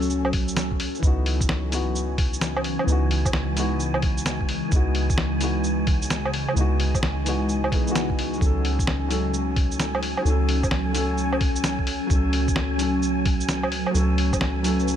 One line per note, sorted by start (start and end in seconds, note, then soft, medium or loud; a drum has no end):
0.00 0.92 C#2 loud
0.00 1.03 F#3 medium
0.00 1.04 F#3 medium
0.00 1.05 A3 medium
0.00 1.05 C#4 medium
0.00 1.97 C#4 medium
0.00 1.03 A4 medium
0.00 1.04 A4 loud
0.00 2.61 G#5 medium
0.00 shaker soft
0.10 shaker medium
0.25 low woodblock medium
0.33 kick loud
0.33 open hi-hat medium
0.48 shaker medium
0.57 snare loud
0.57 shaker medium
0.71 kick medium
0.80 open hi-hat medium
0.95 shaker soft
0.99 2.77 C#2 loud
0.99 1.68 E3 medium
0.99 1.69 B3 medium
0.99 kick loud
0.99 shaker medium
1.03 8.41 C#3 medium
1.03 1.71 D#4 medium
1.03 1.72 F#4 medium
1.03 14.96 G#5 medium
1.25 5.82 E3 medium
1.25 open hi-hat medium
1.41 kick loud
1.41 shaker medium
1.49 snare loud
1.60 8.41 G#3 medium
1.70 1.91 E3 medium
1.70 1.92 B3 medium
1.70 1.92 D#4 medium
1.70 open hi-hat medium
1.70 shaker medium
1.74 1.93 F#4 medium
1.95 shaker medium
2.18 kick loud
2.18 open hi-hat medium
2.33 shaker medium
2.41 snare loud
2.41 shaker medium
2.57 low woodblock medium
2.64 open hi-hat medium
2.79 low woodblock medium
2.84 4.62 C#2 loud
2.84 3.53 E3 medium
2.84 3.54 B3 medium
2.88 3.56 D#4 medium
2.88 shaker medium
2.92 3.57 F#4 loud
3.11 open hi-hat medium
3.25 kick loud
3.25 low woodblock soft
3.25 shaker medium
3.33 snare loud
3.55 3.76 E3 medium
3.55 3.76 B3 medium
3.55 3.77 D#4 medium
3.55 open hi-hat medium
3.55 shaker medium
3.59 3.78 F#4 medium
3.80 shaker medium
3.94 low woodblock medium
4.02 kick loud
4.02 open hi-hat medium
4.17 shaker medium
4.26 snare loud
4.26 shaker medium
4.41 kick medium
4.49 open hi-hat medium
4.68 6.46 C#2 loud
4.68 5.37 E3 medium
4.68 5.39 B3 medium
4.68 kick loud
4.68 shaker medium
4.73 5.40 D#4 medium
4.73 5.41 F#4 loud
4.95 open hi-hat medium
5.10 kick loud
5.10 shaker medium
5.18 snare loud
5.40 5.60 E3 medium
5.40 5.61 B3 medium
5.40 5.62 D#4 medium
5.40 open hi-hat medium
5.40 shaker medium
5.44 5.62 F#4 medium
5.64 10.20 D#4 medium
5.64 shaker medium
5.87 kick loud
5.87 open hi-hat medium
6.02 shaker medium
6.10 snare loud
6.10 shaker medium
6.25 low woodblock medium
6.34 open hi-hat medium
6.49 low woodblock medium
6.53 7.73 C#2 loud
6.53 7.22 E3 medium
6.53 7.23 B3 medium
6.53 shaker medium
6.58 7.25 D#4 medium
6.58 7.26 F#4 loud
6.80 open hi-hat medium
6.95 kick loud
6.95 low woodblock soft
6.95 shaker medium
7.03 snare loud
7.25 7.45 E3 medium
7.25 7.45 B3 medium
7.25 7.46 D#4 medium
7.25 7.47 F#4 medium
7.25 open hi-hat medium
7.25 shaker medium
7.49 shaker medium
7.64 low woodblock medium
7.71 8.19 B1 medium
7.71 7.82 E3 medium
7.71 7.85 B3 medium
7.71 7.85 D#4 medium
7.71 kick loud
7.71 open hi-hat medium
7.75 7.86 G#4 loud
7.83 8.37 E3 loud
7.83 8.39 B3 medium
7.87 8.40 D#4 medium
7.87 shaker medium
7.91 8.41 F#4 loud
7.95 snare loud
7.95 shaker medium
8.10 kick medium
8.18 8.40 C#2 medium
8.18 open hi-hat medium
8.33 shaker soft
8.38 10.16 C#2 loud
8.38 9.07 F#3 medium
8.38 9.08 A3 medium
8.38 kick loud
8.42 14.96 F#3 medium
8.42 9.09 C#4 medium
8.42 9.11 A4 loud
8.42 shaker medium
8.60 14.96 G#5 medium
8.65 open hi-hat medium
8.79 kick loud
8.79 shaker medium
8.87 snare loud
9.00 14.96 C#4 medium
9.00 12.96 A4 medium
9.08 9.29 F#3 medium
9.08 9.30 A3 medium
9.08 9.30 C#4 medium
9.08 open hi-hat medium
9.08 shaker medium
9.12 9.31 A4 medium
9.34 shaker medium
9.56 kick loud
9.56 open hi-hat medium
9.71 shaker medium
9.80 snare loud
9.80 shaker medium
9.95 low woodblock medium
10.03 open hi-hat medium
10.17 low woodblock medium
10.22 12.00 C#2 loud
10.22 10.91 F#3 medium
10.22 10.92 A3 medium
10.22 shaker medium
10.27 10.94 C#4 medium
10.27 10.95 A4 medium
10.49 open hi-hat medium
10.63 kick loud
10.63 low woodblock soft
10.63 shaker medium
10.71 snare loud
10.93 11.14 F#3 medium
10.93 11.14 A3 medium
10.93 11.15 C#4 medium
10.93 open hi-hat medium
10.93 shaker medium
10.97 11.16 A4 loud
11.18 shaker medium
11.33 low woodblock medium
11.41 kick loud
11.41 open hi-hat medium
11.56 shaker medium
11.64 snare loud
11.64 shaker medium
11.79 kick medium
11.87 open hi-hat medium
12.07 13.85 C#2 loud
12.07 12.76 F#3 medium
12.07 12.77 A3 medium
12.07 kick loud
12.07 shaker medium
12.12 12.78 C#4 medium
12.12 12.80 A4 loud
12.33 open hi-hat medium
12.48 kick loud
12.48 shaker medium
12.56 snare loud
12.78 12.99 F#3 medium
12.78 12.99 A3 medium
12.78 13.00 C#4 medium
12.78 14.96 B4 medium
12.78 open hi-hat medium
12.78 shaker medium
12.82 13.01 A4 medium
13.02 shaker medium
13.26 kick loud
13.26 open hi-hat medium
13.40 shaker medium
13.49 snare loud
13.49 shaker medium
13.63 low woodblock medium
13.72 open hi-hat medium
13.87 low woodblock medium
13.91 14.96 C#2 loud
13.91 14.60 F#3 medium
13.91 14.62 A3 medium
13.91 shaker medium
13.96 14.63 C#4 medium
13.96 14.64 A4 loud
14.18 open hi-hat medium
14.33 kick loud
14.33 low woodblock soft
14.33 shaker medium
14.41 snare loud
14.63 14.83 F#3 medium
14.63 14.84 A3 medium
14.63 14.85 C#4 medium
14.63 open hi-hat medium
14.63 shaker medium
14.67 14.85 A4 loud
14.79 shaker soft
14.88 shaker medium